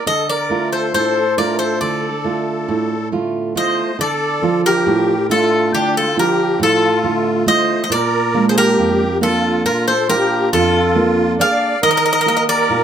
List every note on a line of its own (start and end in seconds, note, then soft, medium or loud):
0.06 0.91 D3 medium
0.06 0.27 A4 medium
0.06 0.29 D#5 medium
0.30 0.69 A#4 medium
0.30 0.72 D5 medium
0.50 1.20 A3 soft
0.50 1.20 D4 soft
0.50 1.20 F4 medium
0.73 0.92 A4 medium
0.73 0.92 C5 medium
0.94 1.78 A2 medium
0.94 1.35 A4 medium
0.94 1.34 C5 medium
1.37 2.07 A3 soft
1.37 2.07 D4 soft
1.37 2.08 F4 soft
1.37 1.58 A#4 medium
1.37 1.58 D5 medium
1.59 1.80 A4 medium
1.59 1.79 C5 medium
1.81 2.66 D3 medium
1.81 3.08 A4 medium
1.81 3.08 D5 medium
2.24 2.94 A3 soft
2.24 2.95 D4 soft
2.24 2.95 F4 soft
2.68 3.53 A2 medium
3.12 3.82 D3 soft
3.12 3.54 A3 soft
3.12 3.55 F4 soft
3.55 3.90 A3 soft
3.55 3.90 F4 medium
3.55 3.97 C5 medium
3.55 3.97 D#5 medium
3.99 4.83 D3 medium
3.99 4.61 A4 medium
3.99 4.66 D5 medium
4.42 5.12 F3 medium
4.42 5.13 D4 soft
4.42 5.13 F4 medium
4.66 5.27 G4 medium
4.66 5.31 A#4 medium
4.87 5.71 A2 medium
5.30 5.99 A3 soft
5.30 6.00 D4 soft
5.30 6.00 F4 medium
5.30 5.71 F4 medium
5.30 5.71 A4 medium
5.74 6.58 D3 medium
5.74 5.95 D4 medium
5.74 5.94 G4 medium
5.97 6.17 F4 medium
5.97 6.19 A4 medium
6.17 6.86 F3 soft
6.17 6.87 D4 soft
6.17 6.87 F4 soft
6.17 6.59 G4 medium
6.17 6.59 A#4 medium
6.60 7.44 A2 medium
6.60 7.45 F4 medium
6.60 7.45 A4 medium
7.03 7.74 D3 soft
7.03 7.45 A3 soft
7.03 7.46 F4 medium
7.46 7.82 A3 medium
7.46 7.82 F4 medium
7.46 7.82 C5 medium
7.46 7.82 D#5 loud
7.84 7.91 C5 medium
7.84 7.91 D#5 medium
7.90 8.75 A#2 medium
7.90 8.46 A#4 medium
7.90 8.46 D5 medium
8.34 9.04 G#3 medium
8.34 9.04 A#3 medium
8.34 9.04 D4 soft
8.49 8.56 G#4 medium
8.49 8.56 C5 medium
8.56 9.18 G4 medium
8.56 9.18 A#4 medium
8.79 9.63 F2 medium
9.21 9.91 A#3 soft
9.21 9.91 D4 soft
9.21 9.91 F4 medium
9.21 9.62 F4 medium
9.21 9.63 A4 medium
9.65 10.49 A#2 medium
9.65 9.86 F4 medium
9.65 9.86 A#4 medium
9.88 10.08 A4 medium
9.88 10.07 C5 medium
10.09 10.78 A#3 soft
10.09 10.79 D4 soft
10.09 10.79 F4 medium
10.09 10.49 G4 medium
10.09 10.50 A#4 medium
10.52 11.37 F2 medium
10.52 11.35 F4 medium
10.52 11.41 A4 loud
10.95 11.38 A#3 soft
10.95 11.39 D4 soft
10.95 11.40 F4 soft
11.39 11.74 A#3 medium
11.39 11.74 D4 soft
11.39 11.74 G#4 medium
11.39 11.80 D5 medium
11.39 11.83 F5 loud
11.82 12.67 D#3 medium
11.82 12.44 A#4 loud
11.82 11.89 D#5 loud
11.91 11.96 D#5 medium
11.97 12.04 D#5 medium
12.06 12.11 D#5 medium
12.13 12.20 D#5 medium
12.21 12.27 D#5 medium
12.26 12.84 A#3 medium
12.26 12.84 D#4 soft
12.26 12.84 G4 medium
12.26 12.35 D#5 medium
12.37 12.43 D#5 medium
12.48 12.84 A#4 medium
12.48 12.84 D5 loud
12.70 12.84 A#2 medium